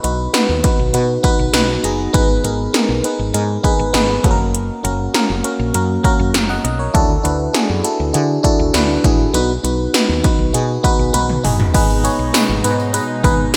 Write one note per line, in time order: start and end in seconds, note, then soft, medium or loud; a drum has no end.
0.03 0.27 B1 medium
0.03 0.22 B3 medium
0.03 0.22 D#4 medium
0.03 0.22 F#4 medium
0.03 0.22 B4 medium
0.03 closed hi-hat medium
0.33 0.52 B3 medium
0.33 0.52 D#4 medium
0.33 0.52 F#4 medium
0.33 0.52 B4 medium
0.33 snare loud
0.33 closed hi-hat medium
0.49 0.60 D#2 medium
0.63 0.82 B3 medium
0.63 0.82 D#4 medium
0.63 0.82 F#4 medium
0.63 0.82 B4 medium
0.63 kick medium
0.63 closed hi-hat medium
0.79 0.91 B1 medium
0.93 1.17 B2 medium
0.93 1.12 B3 medium
0.93 1.12 D#4 medium
0.93 1.12 F#4 medium
0.93 1.13 B4 medium
0.93 closed hi-hat medium
1.23 1.42 B3 loud
1.23 1.42 D#4 medium
1.23 1.42 F#4 medium
1.23 1.42 B4 loud
1.23 kick medium
1.23 closed hi-hat medium
1.39 1.51 B1 medium
1.53 1.76 B1 medium
1.53 1.72 B3 loud
1.53 1.72 D#4 medium
1.53 1.72 F#4 medium
1.53 1.73 B4 loud
1.53 1.82 F#5 medium
1.53 snare loud
1.53 closed hi-hat medium
1.83 2.06 F#1 medium
1.83 2.02 B3 medium
1.83 2.02 D#4 medium
1.83 2.02 F#4 medium
1.83 2.03 G#4 medium
1.83 2.12 A#5 medium
1.83 closed hi-hat medium
2.13 2.37 G#1 medium
2.13 2.32 B3 loud
2.13 2.32 D#4 medium
2.13 2.32 G#4 medium
2.13 2.32 B4 loud
2.13 kick loud
2.13 closed hi-hat medium
2.44 2.67 G#1 medium
2.44 2.62 B3 medium
2.44 2.62 D#4 medium
2.44 2.63 G#4 medium
2.44 2.63 A#4 medium
2.44 closed hi-hat medium
2.73 2.92 B3 medium
2.73 2.92 D#4 medium
2.73 2.92 G#4 medium
2.73 2.92 A#4 medium
2.73 snare loud
2.73 closed hi-hat medium
2.89 3.00 B1 medium
3.04 3.22 B3 medium
3.04 3.22 D#4 medium
3.04 3.22 G#4 medium
3.04 3.23 B4 medium
3.04 closed hi-hat medium
3.19 3.31 G#1 medium
3.33 3.57 G#2 loud
3.33 3.52 B3 medium
3.33 3.52 D#4 medium
3.33 3.52 G#4 medium
3.33 3.52 A#4 medium
3.33 closed hi-hat medium
3.63 3.82 B3 loud
3.63 3.82 D#4 medium
3.63 3.82 G#4 medium
3.63 3.83 B4 loud
3.63 kick medium
3.63 closed hi-hat medium
3.79 3.91 G#1 medium
3.93 4.17 G#1 medium
3.93 4.12 B3 loud
3.93 4.12 D#4 medium
3.93 4.12 G#4 medium
3.93 4.12 B4 loud
3.93 snare loud
3.93 closed hi-hat medium
4.23 4.69 F#1 loud
4.23 4.72 A#3 medium
4.23 4.72 C#4 medium
4.23 4.72 F#4 medium
4.23 4.31 A4 medium
4.23 kick medium
4.23 closed hi-hat medium
4.31 4.75 A#4 medium
4.54 closed hi-hat medium
4.83 5.07 F#1 medium
4.83 5.02 A#3 medium
4.83 5.02 C#4 medium
4.83 5.02 F#4 medium
4.83 5.02 A#4 medium
4.83 closed hi-hat medium
5.14 5.32 A#3 medium
5.14 5.32 C#4 medium
5.14 5.32 F#4 medium
5.14 5.33 A#4 medium
5.14 snare loud
5.14 closed hi-hat medium
5.30 5.41 F#1 medium
5.43 5.62 A#3 medium
5.43 5.62 C#4 medium
5.43 5.62 F#4 medium
5.43 5.63 A#4 medium
5.43 closed hi-hat medium
5.59 5.71 A#1 medium
5.74 5.97 F#2 loud
5.74 5.92 A#3 medium
5.74 5.92 C#4 medium
5.74 5.92 F#4 medium
5.74 5.93 A#4 medium
5.74 closed hi-hat medium
6.03 6.22 A#3 loud
6.03 6.22 C#4 medium
6.03 6.22 F#4 medium
6.03 6.23 A#4 loud
6.03 kick medium
6.03 closed hi-hat medium
6.19 6.31 F#2 medium
6.34 6.57 F#1 medium
6.34 snare loud
6.34 closed hi-hat medium
6.49 6.63 D#5 medium
6.49 6.63 F#5 medium
6.64 6.87 B1 medium
6.64 6.79 D#5 medium
6.64 closed hi-hat medium
6.79 7.08 A#4 medium
6.79 7.08 C#5 medium
6.94 7.17 D2 medium
6.94 7.12 D4 loud
6.94 7.12 E4 medium
6.94 7.12 F#4 medium
6.94 7.13 A4 loud
6.94 kick loud
6.94 closed hi-hat medium
7.23 7.47 D2 loud
7.23 7.42 D4 medium
7.23 7.42 E4 medium
7.23 7.42 F#4 medium
7.23 7.43 B4 medium
7.23 closed hi-hat medium
7.53 7.72 D4 medium
7.53 7.72 E4 medium
7.53 7.72 F#4 medium
7.53 7.72 G#4 medium
7.53 snare loud
7.53 closed hi-hat medium
7.69 7.81 F#2 medium
7.83 8.02 D4 medium
7.83 8.02 E4 medium
7.83 8.02 F#4 medium
7.83 8.03 A4 medium
7.83 closed hi-hat medium
8.00 8.11 D2 medium
8.13 8.37 D3 medium
8.13 8.32 D4 medium
8.13 8.32 E4 medium
8.13 8.32 F#4 medium
8.13 8.32 G#4 medium
8.13 closed hi-hat medium
8.43 8.62 D4 loud
8.43 8.62 E4 medium
8.43 8.62 F#4 medium
8.43 8.62 A4 loud
8.43 kick medium
8.43 closed hi-hat medium
8.59 8.71 D2 medium
8.73 8.97 D2 medium
8.73 8.92 D4 loud
8.73 8.92 E4 medium
8.73 8.92 F#4 medium
8.73 8.93 B4 loud
8.73 snare loud
8.73 closed hi-hat medium
9.04 9.27 A1 medium
9.04 9.22 D4 medium
9.04 9.22 E4 medium
9.04 9.23 F#4 medium
9.04 9.23 G#4 medium
9.04 kick medium
9.04 closed hi-hat medium
9.34 9.56 B1 loud
9.34 9.52 B3 loud
9.34 9.52 D#4 medium
9.34 9.52 F#4 medium
9.34 9.53 B4 loud
9.34 closed hi-hat medium
9.63 9.87 B1 medium
9.63 9.82 B3 medium
9.63 9.82 D#4 medium
9.63 9.82 F#4 medium
9.63 9.83 B4 medium
9.63 closed hi-hat medium
9.94 10.12 B3 medium
9.94 10.12 D#4 medium
9.94 10.12 F#4 medium
9.94 10.13 B4 medium
9.94 snare loud
9.94 closed hi-hat medium
10.09 10.20 D#2 medium
10.23 10.42 B3 medium
10.23 10.42 D#4 medium
10.23 10.42 F#4 medium
10.23 10.43 B4 medium
10.23 kick medium
10.23 closed hi-hat medium
10.39 10.50 B1 medium
10.53 10.77 B2 medium
10.53 10.72 B3 medium
10.53 10.72 D#4 medium
10.53 10.72 F#4 medium
10.53 10.72 G#4 medium
10.53 closed hi-hat medium
10.83 11.02 B3 loud
10.83 11.02 D#4 medium
10.83 11.02 F#4 medium
10.83 11.02 B4 loud
10.83 kick medium
10.83 closed hi-hat medium
10.99 11.10 B1 medium
11.13 11.37 B1 medium
11.13 11.32 B3 loud
11.13 11.32 D#4 medium
11.13 11.32 F#4 medium
11.13 11.32 B4 loud
11.13 closed hi-hat medium
11.13 high tom medium
11.30 mid tom medium
11.43 11.67 F#1 medium
11.43 11.62 B3 medium
11.43 11.62 D#4 medium
11.43 11.62 F#4 medium
11.43 11.63 G#4 medium
11.43 mid tom medium
11.43 open hi-hat medium
11.60 floor tom medium
11.74 12.08 G#1 medium
11.74 13.57 B2 medium
11.74 13.57 G#3 medium
11.74 11.92 B3 loud
11.74 11.92 D#4 medium
11.74 13.57 D#4 medium
11.74 11.92 G#4 medium
11.74 11.93 B4 loud
11.74 kick loud
11.74 closed hi-hat medium
11.74 crash medium
11.74 tambourine soft
11.90 tambourine soft
12.03 12.22 B3 medium
12.03 12.22 D#4 medium
12.03 12.22 G#4 medium
12.03 12.22 C#5 medium
12.03 closed hi-hat medium
12.03 tambourine medium
12.19 12.30 B1 medium
12.33 12.52 B3 medium
12.33 12.52 D#4 medium
12.33 12.52 G#4 medium
12.33 12.52 B4 medium
12.33 snare loud
12.33 closed hi-hat medium
12.33 tambourine medium
12.49 12.60 G#1 medium
12.63 12.98 G#2 medium
12.63 12.82 B3 medium
12.63 12.82 D#4 medium
12.63 12.82 G#4 medium
12.63 12.83 B4 medium
12.63 closed hi-hat medium
12.63 tambourine soft
12.80 tambourine soft
12.93 13.12 B3 medium
12.93 13.12 D#4 medium
12.93 13.12 G#4 medium
12.93 13.12 B4 medium
12.93 closed hi-hat medium
12.93 tambourine medium
13.23 13.47 G#1 medium
13.23 13.42 B3 loud
13.23 13.42 D#4 medium
13.23 13.42 G#4 medium
13.23 13.43 B4 loud
13.23 kick medium
13.23 closed hi-hat medium
13.23 tambourine soft